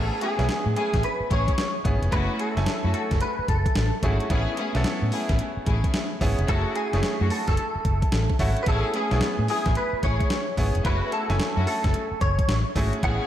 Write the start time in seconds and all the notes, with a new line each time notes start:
Already playing: A3 B3 C#4 E4 G#4 A4 F#5
0.21 A3 C#4 E4 G#4, closed hi-hat
0.38 B1 B3 C#4 E4 G#4, snare, closed hi-hat
0.48 muted fingered electric bass stroke, snare, closed hi-hat
0.66 A2
0.76 A3 C#4 E4 G#4, closed hi-hat
0.94 A1, kick, snare, closed hi-hat
1.03 B4, closed hi-hat
1.20 muted fingered electric bass stroke
1.30 A1 A3 C#4 E4 G#4 C#5, kick, closed hi-hat
1.48 kick, closed hi-hat
1.58 snare, closed hi-hat
1.84 G#1 B3 C#4 E4 G#4, kick, closed hi-hat
2.02 F1, closed hi-hat
2.12 F#1 A3 C#4 E4 F#4 G#4 B4, kick, closed hi-hat
2.39 A4, closed hi-hat
2.56 F#1 A3 C#4 E4 G#5, snare, closed hi-hat
2.66 muted fingered electric bass stroke, snare, closed hi-hat
2.84 F#2 A3 C#4 E4 F#4
2.94 A4, closed hi-hat
3.11 F#1, kick, snare, closed hi-hat
3.21 B4, closed hi-hat
3.39 muted fingered electric bass stroke
3.48 F#1 A4, kick, closed hi-hat
3.66 kick, closed hi-hat
3.75 A1, snare, closed hi-hat
4.03 G#1 A3 C#4 E4 F#4 G#4, kick, closed hi-hat
4.20 closed hi-hat
4.30 A1 A3 B3 C#4 E4 G#4, kick, closed hi-hat
4.57 A3 C#4 E4 G#4, closed hi-hat
4.75 B1 B3 C#4 E4 A4, snare, closed hi-hat
4.84 muted fingered electric bass stroke, snare, closed hi-hat
5.02 A2
5.11 A3 C#4 E4 G#4, open hi-hat
5.29 A1, kick, snare, closed hi-hat
5.39 closed hi-hat
5.57 muted fingered electric bass stroke
5.66 A1 A3 C#4 E4 G#4, kick, closed hi-hat
5.84 kick, closed hi-hat
5.94 snare, closed hi-hat
6.21 G#1 B3 C#4 E4 G#4, kick, open hi-hat
6.39 F1, closed hi-hat
6.48 F#1 A3 C#4 E4 F#4 G#4 A4, kick, closed hi-hat
6.75 G#4, closed hi-hat
6.93 F#1 A3 C#4 E4 G#4, snare, closed hi-hat
7.03 muted fingered electric bass stroke, snare, closed hi-hat
7.20 F#2 A3 C#4 E4 F#4
7.30 A4, open hi-hat
7.48 F#1 A4, kick, snare, closed hi-hat
7.57 closed hi-hat
7.75 muted fingered electric bass stroke
7.85 F#1, kick, closed hi-hat
8.02 kick, closed hi-hat
8.12 A1, snare, closed hi-hat
8.30 kick
8.39 G#1 A3 C#4 E4 F#4, kick, open hi-hat
8.57 closed hi-hat
8.63 A1 A3 B3 C#4 B4, kick, closed hi-hat
8.67 C#4 E4 G#4 A4
8.94 A3 C#4 E4 G#4, closed hi-hat
9.11 B1 B3 C#4 E4 G#4, snare, closed hi-hat
9.21 muted fingered electric bass stroke, snare, closed hi-hat
9.39 A2
9.48 A3 C#4 E4 G#4, open hi-hat
9.66 A1, kick, snare, closed hi-hat
9.75 B4, closed hi-hat
9.93 muted fingered electric bass stroke
10.03 A1 A3 C#4 E4 G#4 C#5, kick, closed hi-hat
10.20 kick, closed hi-hat
10.30 snare, closed hi-hat
10.57 G#1 B3 C#4 E4 G#4, kick, open hi-hat
10.75 F1, closed hi-hat
10.84 F#1 A3 C#4 E4 F#4 G#4 B4, kick, closed hi-hat
11.12 A4, closed hi-hat
11.29 F#1 A3 C#4 E4 G#5, snare, closed hi-hat
11.39 muted fingered electric bass stroke, snare, closed hi-hat
11.57 F#2 A3 C#4 E4 F#4
11.67 A4, open hi-hat
11.84 F#1, kick, snare, closed hi-hat
11.94 closed hi-hat
12.11 muted fingered electric bass stroke
12.21 F#1 C#5, kick, closed hi-hat
12.39 kick, closed hi-hat
12.48 A1, snare, closed hi-hat
12.75 G#1 A3 C#4 E4 F#4 G#4, kick, open hi-hat
12.93 closed hi-hat
13.02 A1 A3 B3 C#4 E4 G#4 F#5, kick, closed hi-hat